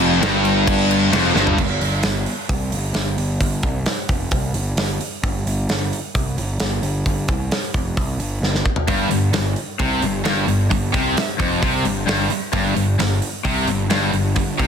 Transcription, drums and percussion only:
0.23 snare, crash
0.45 crash
0.67 kick, crash
0.91 crash
1.13 snare, crash
1.25 snare
1.36 snare
1.47 floor tom
1.58 kick, crash
1.81 open hi-hat
2.03 snare, open hi-hat
2.26 open hi-hat
2.49 kick, open hi-hat
2.72 open hi-hat
2.94 snare, open hi-hat
3.18 open hi-hat
3.41 kick, open hi-hat
3.63 kick, open hi-hat
3.86 snare, open hi-hat
4.09 kick, open hi-hat
4.31 kick, open hi-hat
4.54 open hi-hat
4.77 snare, open hi-hat
5.01 open hi-hat
5.24 kick, open hi-hat
5.47 open hi-hat
5.69 snare, open hi-hat
5.93 open hi-hat
6.15 kick, open hi-hat
6.38 open hi-hat
6.60 snare, open hi-hat
6.83 open hi-hat
7.06 kick, open hi-hat
7.28 kick, open hi-hat
7.52 snare, open hi-hat
7.74 kick, open hi-hat
7.97 kick, open hi-hat
8.20 open hi-hat
8.43 snare
8.55 snare
8.65 kick
8.76 floor tom
8.88 kick, open hi-hat
9.11 open hi-hat
9.33 snare, open hi-hat
9.56 open hi-hat
9.79 kick, open hi-hat
10.02 open hi-hat
10.25 snare, open hi-hat
10.48 open hi-hat
10.71 kick, open hi-hat
10.94 kick, open hi-hat
11.17 snare, open hi-hat
11.40 kick, open hi-hat
11.63 kick, open hi-hat
11.85 open hi-hat
12.08 snare, open hi-hat
12.30 open hi-hat
12.53 kick, open hi-hat
12.77 open hi-hat
13.00 snare, open hi-hat
13.22 open hi-hat
13.45 kick, open hi-hat
13.67 open hi-hat
13.90 snare, open hi-hat
14.13 open hi-hat
14.36 kick, open hi-hat
14.59 kick, open hi-hat

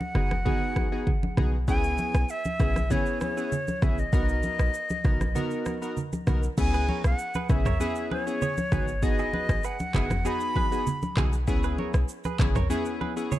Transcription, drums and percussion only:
0.01 high conga
0.15 cross-stick, low conga
0.31 cross-stick, high conga
0.46 kick, low conga
0.76 kick, cross-stick, high conga
1.07 kick, low conga
1.23 high conga
1.37 cross-stick, high conga, low conga
1.68 kick, shaker
1.84 shaker
1.98 high conga, shaker
2.14 cross-stick, shaker
2.29 shaker
2.45 high conga, shaker
2.60 kick, cross-stick, low conga, shaker
2.76 cross-stick, high conga, shaker
2.91 kick, low conga, shaker
3.06 shaker
3.21 cross-stick, high conga, shaker
3.38 shaker
3.52 low conga, shaker
3.68 high conga, shaker
3.82 kick, cross-stick, high conga, low conga, shaker
3.98 shaker
4.13 kick, shaker
4.29 shaker
4.43 high conga, shaker
4.59 cross-stick, shaker
4.74 shaker
4.89 high conga, shaker
5.04 kick, cross-stick, high conga, low conga, shaker
5.21 cross-stick, high conga, shaker
5.36 low conga, shaker
5.51 shaker
5.66 cross-stick, high conga, shaker
5.82 shaker
5.97 low conga, shaker
6.13 high conga, shaker
6.27 cross-stick, high conga, low conga, shaker
6.43 shaker
6.58 kick, crash, shaker
6.73 shaker
6.89 high conga
7.04 cross-stick, shaker
7.19 shaker
7.34 high conga, shaker
7.49 kick, cross-stick, high conga, low conga, shaker
7.65 cross-stick, mid tom, high conga, shaker
7.81 shaker
7.96 shaker
8.11 high conga
8.27 shaker
8.42 low conga, shaker
8.57 high conga, shaker
8.72 kick, cross-stick, high conga, low conga, shaker
8.88 shaker
9.03 kick, shaker
9.18 shaker
9.33 high conga
9.49 kick, cross-stick, shaker
9.64 shaker
9.79 high conga, shaker
9.94 kick, cross-stick, clap, high conga, low conga, shaker
10.10 cross-stick, mid tom, high conga, shaker
10.25 shaker
10.40 shaker
10.56 kick, high conga
10.72 shaker
10.87 low conga, shaker
11.02 high conga, shaker
11.17 cross-stick, clap, high conga, low conga, shaker
11.33 shaker
11.48 kick, shaker
11.63 shaker
11.78 high conga
11.94 cross-stick, shaker
12.09 shaker
12.24 high conga, shaker
12.39 kick, cross-stick, clap, high conga, low conga, shaker
12.55 cross-stick, mid tom, high conga, shaker
12.70 shaker
12.85 shaker
13.01 high conga
13.17 shaker
13.32 low conga, shaker

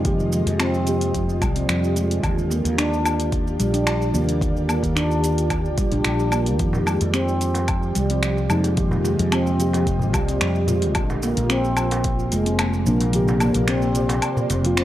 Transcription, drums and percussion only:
0.05 kick, closed hi-hat, shaker
0.20 shaker
0.32 shaker
0.47 closed hi-hat, shaker
0.60 finger snap, closed hi-hat, low woodblock, shaker
0.74 shaker
0.87 closed hi-hat, shaker
1.01 closed hi-hat, shaker
1.14 kick, closed hi-hat, shaker
1.29 shaker
1.42 kick, closed hi-hat, low woodblock, shaker
1.56 closed hi-hat, shaker
1.69 finger snap, closed hi-hat, shaker
1.84 shaker
1.96 closed hi-hat, shaker
2.11 closed hi-hat, shaker
2.23 kick, closed hi-hat, low woodblock, shaker
2.38 shaker
2.51 shaker
2.65 closed hi-hat, shaker
2.78 finger snap, closed hi-hat, shaker
2.93 shaker
3.06 closed hi-hat, low woodblock, shaker
3.20 closed hi-hat, shaker
3.32 kick, closed hi-hat, shaker
3.47 shaker
3.60 closed hi-hat, shaker
3.74 closed hi-hat, shaker
3.87 finger snap, closed hi-hat, low woodblock, shaker
4.02 shaker
4.15 shaker
4.29 closed hi-hat, shaker
4.41 kick, closed hi-hat, shaker
4.57 shaker
4.69 low woodblock, shaker
4.83 kick, closed hi-hat, shaker
4.97 finger snap, closed hi-hat, shaker
5.11 shaker
5.24 closed hi-hat, shaker
5.38 closed hi-hat, shaker
5.50 kick, closed hi-hat, low woodblock, shaker
5.65 shaker
5.78 kick, closed hi-hat, shaker
5.92 closed hi-hat, shaker
6.04 finger snap, closed hi-hat, shaker
6.19 shaker
6.32 closed hi-hat, low woodblock, shaker
6.46 closed hi-hat, shaker
6.59 kick, closed hi-hat, shaker
6.73 darbuka tek, darbuka dum, shaker
6.86 darbuka ka, low woodblock, shaker
7.01 closed hi-hat, shaker
7.14 finger snap, closed hi-hat, shaker
7.28 shaker
7.41 closed hi-hat, darbuka ka, shaker
7.54 closed hi-hat, darbuka tek, shaker
7.68 kick, closed hi-hat, low woodblock, shaker
7.83 shaker
7.95 closed hi-hat, shaker
8.10 closed hi-hat, shaker
8.23 finger snap, closed hi-hat, shaker
8.37 darbuka ka, shaker
8.50 low woodblock, shaker
8.64 closed hi-hat, darbuka ka, darbuka tek, shaker
8.77 kick, closed hi-hat, shaker
8.91 darbuka tek, darbuka dum, shaker
9.05 darbuka ka, shaker
9.19 closed hi-hat, shaker
9.32 finger snap, closed hi-hat, low woodblock, shaker
9.47 shaker
9.60 closed hi-hat, shaker
9.73 closed hi-hat, darbuka tek, shaker
9.87 kick, closed hi-hat, shaker
9.99 darbuka dum, shaker
10.13 kick, closed hi-hat, darbuka ka, darbuka tek, low woodblock, shaker
10.28 closed hi-hat, shaker
10.41 finger snap, closed hi-hat, shaker
10.55 shaker
10.67 closed hi-hat, darbuka dum, shaker
10.82 closed hi-hat, darbuka ka, shaker
10.95 kick, closed hi-hat, low woodblock, shaker
11.10 darbuka tek, darbuka dum, shaker
11.23 darbuka ka, shaker
11.37 closed hi-hat, shaker
11.50 finger snap, closed hi-hat, shaker
11.65 shaker
11.77 closed hi-hat, darbuka ka, low woodblock, shaker
11.91 closed hi-hat, darbuka tek, shaker
12.04 kick, closed hi-hat, shaker
12.19 shaker
12.32 closed hi-hat, shaker
12.46 closed hi-hat, shaker
12.59 finger snap, closed hi-hat, low woodblock, shaker
12.73 darbuka ka, shaker
12.86 shaker
13.01 closed hi-hat, darbuka ka, darbuka tek, shaker
13.13 closed hi-hat, shaker
13.28 darbuka tek, darbuka dum, shaker
13.40 closed hi-hat, darbuka ka, low woodblock, shaker
13.54 closed hi-hat, shaker
13.68 finger snap, closed hi-hat, shaker
13.82 darbuka ka, shaker
13.95 closed hi-hat, darbuka ka, shaker
14.09 closed hi-hat, darbuka tek, shaker
14.22 closed hi-hat, low woodblock, shaker
14.37 darbuka dum, shaker
14.50 closed hi-hat, darbuka ka, darbuka tek, shaker
14.65 closed hi-hat, shaker
14.77 finger snap, closed hi-hat, shaker

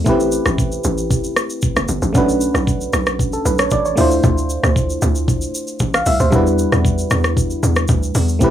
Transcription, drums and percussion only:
0.06 kick, shaker
0.20 shaker
0.32 shaker
0.46 cross-stick, shaker
0.58 kick, shaker
0.72 shaker
0.84 shaker
0.98 shaker
1.11 kick, shaker
1.24 shaker
1.36 cross-stick, shaker
1.50 shaker
1.62 kick, shaker
1.76 cross-stick, shaker
1.88 shaker
2.02 shaker
2.15 kick, shaker
2.29 shaker
2.41 shaker
2.55 cross-stick, shaker
2.67 kick, shaker
2.81 shaker
2.93 cross-stick, shaker
3.07 cross-stick, shaker
3.19 kick, shaker
3.33 shaker
3.46 shaker
3.59 cross-stick, shaker
3.71 kick, shaker
3.85 shaker
3.97 open hi-hat, shaker
4.11 shaker
4.24 kick, shaker
4.38 shaker
4.50 shaker
4.64 cross-stick, shaker
4.76 kick, shaker
4.90 shaker
5.02 shaker
5.15 shaker
5.28 kick, shaker
5.41 shaker
5.55 shaker
5.67 shaker
5.79 kick, shaker
5.94 cross-stick, shaker
6.06 open hi-hat, shaker
6.20 shaker
6.32 kick, shaker
6.47 shaker
6.59 shaker
6.72 cross-stick, shaker
6.85 kick, shaker
6.98 shaker
7.11 cross-stick, shaker
7.24 cross-stick, shaker
7.37 kick, shaker
7.50 shaker
7.63 shaker
7.76 cross-stick, shaker
7.88 kick, shaker
8.03 shaker
8.15 open hi-hat, shaker
8.29 shaker
8.41 kick, shaker

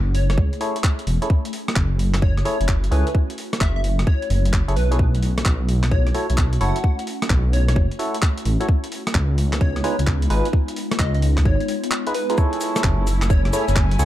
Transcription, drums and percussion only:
0.15 open hi-hat
0.30 cross-stick, closed hi-hat
0.38 kick
0.53 closed hi-hat
0.61 open hi-hat
0.76 closed hi-hat
0.84 kick, clap
0.99 closed hi-hat
1.07 open hi-hat
1.22 closed hi-hat
1.30 kick
1.45 closed hi-hat
1.53 open hi-hat
1.68 cross-stick, closed hi-hat
1.76 kick, clap
1.99 open hi-hat
2.14 cross-stick, clap, closed hi-hat
2.22 kick
2.37 cross-stick, closed hi-hat
2.45 open hi-hat
2.61 closed hi-hat
2.68 kick, clap
2.84 closed hi-hat
2.92 open hi-hat
3.07 closed hi-hat
3.15 kick
3.30 closed hi-hat
3.38 open hi-hat
3.53 cross-stick, closed hi-hat
3.61 kick, clap
3.84 open hi-hat
3.99 cross-stick, closed hi-hat
4.07 kick
4.22 closed hi-hat
4.30 open hi-hat
4.45 closed hi-hat
4.53 kick, clap
4.69 closed hi-hat
4.77 open hi-hat
4.92 closed hi-hat
4.99 kick
5.15 closed hi-hat
5.23 open hi-hat
5.38 cross-stick, closed hi-hat
5.45 kick, clap
5.69 open hi-hat
5.84 cross-stick, clap, closed hi-hat
5.91 kick
6.07 cross-stick, closed hi-hat
6.15 open hi-hat
6.30 closed hi-hat
6.38 kick, clap
6.53 closed hi-hat
6.61 open hi-hat
6.76 closed hi-hat
6.84 kick
6.99 closed hi-hat
7.07 open hi-hat
7.22 cross-stick, closed hi-hat
7.30 kick, clap
7.53 open hi-hat
7.68 cross-stick, closed hi-hat
7.76 kick
7.91 closed hi-hat
7.99 open hi-hat
8.14 closed hi-hat
8.22 kick, clap
8.38 closed hi-hat
8.45 open hi-hat
8.61 closed hi-hat
8.69 kick
8.84 closed hi-hat
8.92 open hi-hat
9.07 cross-stick, closed hi-hat
9.15 kick, clap
9.38 open hi-hat
9.53 cross-stick, clap, closed hi-hat
9.61 kick
9.76 cross-stick, closed hi-hat
9.84 open hi-hat
9.99 closed hi-hat
10.07 kick, clap
10.22 closed hi-hat
10.30 open hi-hat
10.45 closed hi-hat
10.53 kick
10.68 closed hi-hat
10.76 open hi-hat
10.91 cross-stick, closed hi-hat
10.99 kick, clap
11.15 closed hi-hat
11.22 open hi-hat
11.37 kick, cross-stick, clap, closed hi-hat
11.45 kick
11.61 closed hi-hat
11.68 open hi-hat
11.84 closed hi-hat
11.91 clap
12.07 closed hi-hat
12.14 open hi-hat
12.30 closed hi-hat
12.38 kick, cabasa
12.53 closed hi-hat
12.61 open hi-hat, cabasa
12.76 cross-stick, closed hi-hat, cabasa
12.84 kick, clap, cabasa
13.07 open hi-hat, cabasa
13.22 cross-stick, clap, closed hi-hat, cabasa
13.30 kick, cabasa
13.45 cross-stick, closed hi-hat
13.53 open hi-hat, cabasa
13.68 closed hi-hat, cabasa
13.76 kick, clap, cabasa
13.91 closed hi-hat
13.99 open hi-hat, cabasa

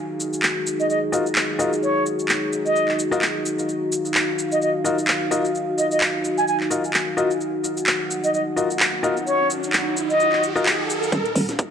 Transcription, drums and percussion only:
0.20 shaker
0.33 shaker
0.43 clap, shaker
0.67 shaker
0.80 shaker
0.90 shaker
1.13 shaker
1.26 shaker
1.35 clap, shaker
1.60 shaker
1.73 shaker
1.83 shaker
2.06 shaker
2.19 shaker
2.29 clap, shaker
2.53 shaker
2.66 shaker
2.76 shaker
2.88 clap
2.99 shaker
3.12 shaker
3.22 clap, shaker
3.46 shaker
3.59 shaker
3.69 shaker
3.92 shaker
4.05 shaker
4.14 clap, shaker
4.39 shaker
4.52 shaker
4.62 shaker
4.85 shaker
4.98 shaker
5.08 clap, shaker
5.32 shaker
5.45 shaker
5.55 shaker
5.78 shaker
5.91 shaker
6.01 clap, shaker
6.25 shaker
6.38 shaker
6.48 shaker
6.60 clap
6.71 shaker
6.84 shaker
6.94 clap, shaker
7.18 shaker
7.31 shaker
7.41 shaker
7.64 shaker
7.77 shaker
7.87 clap, shaker
8.11 shaker
8.24 shaker
8.34 shaker
8.57 shaker
8.70 shaker
8.80 clap, shaker
9.04 shaker
9.17 shaker
9.27 shaker
9.50 shaker
9.63 shaker
9.73 clap, shaker
9.97 shaker
10.10 shaker
10.20 shaker
10.32 clap
10.43 shaker
10.57 shaker
10.66 clap, shaker
10.90 shaker
11.03 shaker
11.12 kick, snare, closed hi-hat, shaker
11.26 closed hi-hat
11.36 open hi-hat, shaker
11.49 snare, closed hi-hat, shaker
11.59 kick, closed hi-hat, shaker

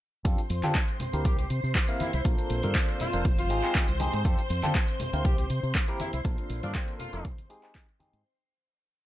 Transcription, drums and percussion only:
0.25 kick, closed hi-hat, shaker
0.38 closed hi-hat, shaker
0.50 open hi-hat, shaker
0.63 clap, closed hi-hat, high conga, shaker
0.75 kick, clap, closed hi-hat, shaker
0.88 closed hi-hat, shaker
1.00 open hi-hat, low conga, shaker
1.13 closed hi-hat, shaker
1.25 kick, closed hi-hat, low conga, shaker
1.38 closed hi-hat, high conga, shaker
1.50 open hi-hat, shaker
1.64 shaker
1.75 kick, clap, closed hi-hat, shaker
1.89 closed hi-hat, shaker
2.00 open hi-hat, high conga, shaker
2.13 closed hi-hat, shaker
2.25 kick, closed hi-hat, shaker
2.38 closed hi-hat, shaker
2.50 open hi-hat, shaker
2.63 closed hi-hat, high conga, shaker
2.75 kick, clap, closed hi-hat, shaker
2.88 closed hi-hat, shaker
3.00 open hi-hat, low conga, shaker
3.13 closed hi-hat, shaker
3.25 kick, closed hi-hat, low conga, shaker
3.38 closed hi-hat, high conga, shaker
3.50 open hi-hat, shaker
3.63 clap, shaker
3.75 kick, clap, closed hi-hat, shaker
3.88 closed hi-hat, shaker
4.00 open hi-hat, high conga, shaker
4.13 closed hi-hat, shaker
4.25 kick, closed hi-hat, shaker
4.39 closed hi-hat, shaker
4.50 open hi-hat, shaker
4.63 clap, closed hi-hat, high conga, shaker
4.75 kick, clap, closed hi-hat, shaker
4.88 closed hi-hat, shaker
5.00 open hi-hat, low conga, shaker
5.13 closed hi-hat, shaker
5.25 kick, closed hi-hat, low conga, shaker
5.38 closed hi-hat, high conga, shaker
5.50 open hi-hat, shaker
5.64 shaker
5.75 kick, clap, closed hi-hat, shaker
5.88 closed hi-hat, shaker
6.00 open hi-hat, high conga, shaker
6.13 closed hi-hat, shaker
6.25 kick, closed hi-hat, shaker
6.38 closed hi-hat, shaker
6.50 open hi-hat, shaker
6.63 closed hi-hat, high conga, shaker
6.75 kick, clap, closed hi-hat, shaker
6.88 closed hi-hat, shaker
7.00 open hi-hat, low conga, shaker
7.13 closed hi-hat, shaker
7.25 kick, closed hi-hat, low conga, shaker
7.38 closed hi-hat, high conga, shaker
7.49 open hi-hat, shaker
7.63 clap, shaker
7.75 kick, clap, closed hi-hat, shaker
7.88 closed hi-hat, shaker
8.00 open hi-hat, high conga, shaker
8.13 closed hi-hat, shaker

